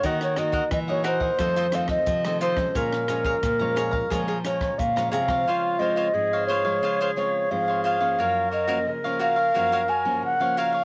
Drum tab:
HH |xxx-x-x-xxx-xxx-|x-x-x-x-x-x-xxx-|----------------|----------------|
SD |-rr-r-r-r-rr-r-r|-rr-r-r-r-rr-r-r|----------------|----------------|
BD |o--oo--oo--oo--o|o--oo--oo--oo--o|----------------|----------------|